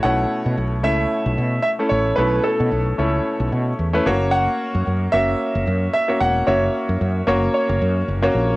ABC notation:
X:1
M:4/4
L:1/16
Q:"Swing 16ths" 1/4=112
K:Amix
V:1 name="Grand piano"
f4 z2 e6 e2 c2 | B2 A8 z6 | f4 z2 e6 e2 f2 | c8 c6 z2 |]
V:2 name="Grand piano"
[A,CEc]4 z2 [A,CEe]4- [A,CEe] z2 [A,CEA]2 z | [A,CEc]4 z2 [A,CEc]4- [A,CEc] z2 [A,CEB] [^A,CFc]2- | [^A,CFc]4 z2 [A,CFe]4- [A,CFe] z2 [A,CFc]2 z | [^A,CFe]4 z2 [A,CFc]4- [A,CFc] z2 [A,CFc]2 z |]
V:3 name="Grand piano" clef=bass
B,,6 z8 z2 | B,,6 z8 z2 | z16 | z16 |]
V:4 name="Fretless electric bass" clef=bass
B,,,2 z B,, B,,,2 C,,2 z B,,, B,,2 z2 A,,,2 | B,,,2 z B,, B,,,2 C,,2 z B,,, B,,2 E,,2 F,,,2- | F,,,2 z F,, F,,2 F,,,2 z F,,, F,,2 z2 E,,,2 | F,,,2 z F,, F,,2 F,,,2 z F,,, F,,2 F,,,2 ^A,,,2 |]